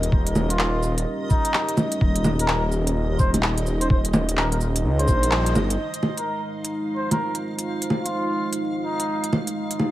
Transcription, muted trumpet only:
0, 0, Header, 1, 2, 480
1, 0, Start_track
1, 0, Key_signature, -4, "minor"
1, 0, Tempo, 472441
1, 120, Time_signature, 4, 2, 24, 8
1, 10070, End_track
2, 0, Start_track
2, 0, Title_t, "Muted trumpet"
2, 0, Program_c, 0, 59
2, 514, Note_on_c, 0, 65, 89
2, 992, Note_off_c, 0, 65, 0
2, 1324, Note_on_c, 0, 63, 92
2, 1802, Note_off_c, 0, 63, 0
2, 2443, Note_on_c, 0, 70, 92
2, 2685, Note_off_c, 0, 70, 0
2, 3238, Note_on_c, 0, 72, 88
2, 3359, Note_off_c, 0, 72, 0
2, 3867, Note_on_c, 0, 72, 85
2, 3926, Note_off_c, 0, 72, 0
2, 3963, Note_on_c, 0, 72, 74
2, 4057, Note_off_c, 0, 72, 0
2, 4453, Note_on_c, 0, 70, 90
2, 4543, Note_off_c, 0, 70, 0
2, 4595, Note_on_c, 0, 70, 74
2, 4650, Note_off_c, 0, 70, 0
2, 5079, Note_on_c, 0, 72, 90
2, 5734, Note_off_c, 0, 72, 0
2, 6275, Note_on_c, 0, 70, 80
2, 6521, Note_off_c, 0, 70, 0
2, 7069, Note_on_c, 0, 72, 76
2, 7195, Note_off_c, 0, 72, 0
2, 7225, Note_on_c, 0, 70, 89
2, 7477, Note_off_c, 0, 70, 0
2, 8177, Note_on_c, 0, 65, 82
2, 8664, Note_off_c, 0, 65, 0
2, 8995, Note_on_c, 0, 63, 83
2, 9477, Note_off_c, 0, 63, 0
2, 10070, End_track
0, 0, End_of_file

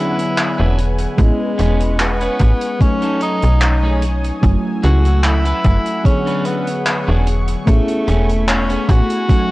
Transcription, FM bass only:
0, 0, Header, 1, 2, 480
1, 0, Start_track
1, 0, Tempo, 810811
1, 703, Time_signature, 4, 2, 24, 8
1, 5632, End_track
2, 0, Start_track
2, 0, Title_t, "FM bass"
2, 0, Program_c, 0, 39
2, 353, Note_on_c, 0, 28, 93
2, 634, Note_off_c, 0, 28, 0
2, 702, Note_on_c, 0, 33, 98
2, 781, Note_off_c, 0, 33, 0
2, 944, Note_on_c, 0, 28, 92
2, 1354, Note_off_c, 0, 28, 0
2, 1423, Note_on_c, 0, 33, 101
2, 1501, Note_off_c, 0, 33, 0
2, 2032, Note_on_c, 0, 35, 81
2, 2554, Note_off_c, 0, 35, 0
2, 2622, Note_on_c, 0, 30, 98
2, 2701, Note_off_c, 0, 30, 0
2, 2865, Note_on_c, 0, 37, 94
2, 3274, Note_off_c, 0, 37, 0
2, 3343, Note_on_c, 0, 30, 100
2, 3421, Note_off_c, 0, 30, 0
2, 4193, Note_on_c, 0, 28, 94
2, 4474, Note_off_c, 0, 28, 0
2, 4543, Note_on_c, 0, 33, 101
2, 4621, Note_off_c, 0, 33, 0
2, 4784, Note_on_c, 0, 28, 93
2, 5193, Note_off_c, 0, 28, 0
2, 5262, Note_on_c, 0, 33, 107
2, 5341, Note_off_c, 0, 33, 0
2, 5632, End_track
0, 0, End_of_file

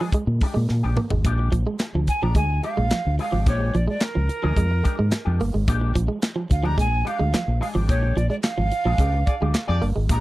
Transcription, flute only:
0, 0, Header, 1, 2, 480
1, 0, Start_track
1, 0, Tempo, 553506
1, 1081, Time_signature, 4, 2, 24, 8
1, 8848, End_track
2, 0, Start_track
2, 0, Title_t, "Flute"
2, 0, Program_c, 0, 73
2, 1808, Note_on_c, 0, 80, 94
2, 1929, Note_on_c, 0, 82, 99
2, 1942, Note_off_c, 0, 80, 0
2, 2045, Note_off_c, 0, 82, 0
2, 2050, Note_on_c, 0, 80, 103
2, 2271, Note_off_c, 0, 80, 0
2, 2291, Note_on_c, 0, 77, 107
2, 2735, Note_off_c, 0, 77, 0
2, 2787, Note_on_c, 0, 77, 102
2, 3001, Note_off_c, 0, 77, 0
2, 3019, Note_on_c, 0, 73, 85
2, 3261, Note_on_c, 0, 74, 82
2, 3274, Note_off_c, 0, 73, 0
2, 3366, Note_off_c, 0, 74, 0
2, 3371, Note_on_c, 0, 74, 89
2, 3498, Note_on_c, 0, 70, 92
2, 3511, Note_off_c, 0, 74, 0
2, 4692, Note_off_c, 0, 70, 0
2, 5650, Note_on_c, 0, 77, 85
2, 5770, Note_on_c, 0, 82, 97
2, 5783, Note_off_c, 0, 77, 0
2, 5887, Note_off_c, 0, 82, 0
2, 5891, Note_on_c, 0, 80, 109
2, 6130, Note_on_c, 0, 77, 101
2, 6143, Note_off_c, 0, 80, 0
2, 6597, Note_off_c, 0, 77, 0
2, 6602, Note_on_c, 0, 77, 95
2, 6656, Note_off_c, 0, 77, 0
2, 6847, Note_on_c, 0, 73, 91
2, 7080, Note_on_c, 0, 74, 82
2, 7093, Note_off_c, 0, 73, 0
2, 7187, Note_off_c, 0, 74, 0
2, 7192, Note_on_c, 0, 74, 91
2, 7244, Note_off_c, 0, 74, 0
2, 7312, Note_on_c, 0, 77, 107
2, 8477, Note_off_c, 0, 77, 0
2, 8767, Note_on_c, 0, 82, 99
2, 8848, Note_off_c, 0, 82, 0
2, 8848, End_track
0, 0, End_of_file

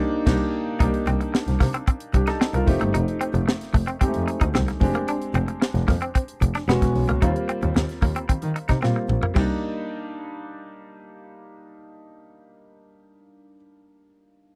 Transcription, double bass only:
0, 0, Header, 1, 2, 480
1, 0, Start_track
1, 0, Tempo, 535236
1, 717, Time_signature, 4, 2, 24, 8
1, 13052, End_track
2, 0, Start_track
2, 0, Title_t, "Double bass"
2, 0, Program_c, 0, 43
2, 239, Note_on_c, 0, 36, 107
2, 310, Note_off_c, 0, 36, 0
2, 719, Note_on_c, 0, 36, 94
2, 791, Note_off_c, 0, 36, 0
2, 955, Note_on_c, 0, 36, 93
2, 1026, Note_off_c, 0, 36, 0
2, 1318, Note_on_c, 0, 36, 94
2, 1390, Note_off_c, 0, 36, 0
2, 1440, Note_on_c, 0, 48, 93
2, 1511, Note_off_c, 0, 48, 0
2, 1919, Note_on_c, 0, 36, 93
2, 1991, Note_off_c, 0, 36, 0
2, 2278, Note_on_c, 0, 36, 79
2, 2350, Note_off_c, 0, 36, 0
2, 2399, Note_on_c, 0, 29, 93
2, 2471, Note_off_c, 0, 29, 0
2, 2522, Note_on_c, 0, 31, 86
2, 2594, Note_off_c, 0, 31, 0
2, 2641, Note_on_c, 0, 29, 99
2, 2712, Note_off_c, 0, 29, 0
2, 3000, Note_on_c, 0, 29, 94
2, 3071, Note_off_c, 0, 29, 0
2, 3357, Note_on_c, 0, 29, 77
2, 3429, Note_off_c, 0, 29, 0
2, 3599, Note_on_c, 0, 41, 45
2, 3637, Note_off_c, 0, 41, 0
2, 3717, Note_on_c, 0, 41, 101
2, 3789, Note_off_c, 0, 41, 0
2, 3958, Note_on_c, 0, 38, 90
2, 4030, Note_off_c, 0, 38, 0
2, 4077, Note_on_c, 0, 36, 94
2, 4149, Note_off_c, 0, 36, 0
2, 4317, Note_on_c, 0, 29, 100
2, 4389, Note_off_c, 0, 29, 0
2, 4796, Note_on_c, 0, 29, 94
2, 4868, Note_off_c, 0, 29, 0
2, 5157, Note_on_c, 0, 29, 105
2, 5228, Note_off_c, 0, 29, 0
2, 5275, Note_on_c, 0, 41, 96
2, 5347, Note_off_c, 0, 41, 0
2, 5756, Note_on_c, 0, 29, 87
2, 5828, Note_off_c, 0, 29, 0
2, 5995, Note_on_c, 0, 28, 96
2, 6067, Note_off_c, 0, 28, 0
2, 6115, Note_on_c, 0, 28, 89
2, 6187, Note_off_c, 0, 28, 0
2, 6235, Note_on_c, 0, 35, 96
2, 6307, Note_off_c, 0, 35, 0
2, 6358, Note_on_c, 0, 37, 78
2, 6430, Note_off_c, 0, 37, 0
2, 6476, Note_on_c, 0, 39, 103
2, 6547, Note_off_c, 0, 39, 0
2, 6838, Note_on_c, 0, 39, 87
2, 6909, Note_off_c, 0, 39, 0
2, 6954, Note_on_c, 0, 39, 90
2, 7025, Note_off_c, 0, 39, 0
2, 7194, Note_on_c, 0, 39, 86
2, 7266, Note_off_c, 0, 39, 0
2, 7437, Note_on_c, 0, 51, 45
2, 7475, Note_off_c, 0, 51, 0
2, 7553, Note_on_c, 0, 51, 88
2, 7624, Note_off_c, 0, 51, 0
2, 7795, Note_on_c, 0, 48, 86
2, 7867, Note_off_c, 0, 48, 0
2, 7914, Note_on_c, 0, 46, 93
2, 7985, Note_off_c, 0, 46, 0
2, 8154, Note_on_c, 0, 34, 93
2, 8225, Note_off_c, 0, 34, 0
2, 8395, Note_on_c, 0, 36, 92
2, 8466, Note_off_c, 0, 36, 0
2, 13052, End_track
0, 0, End_of_file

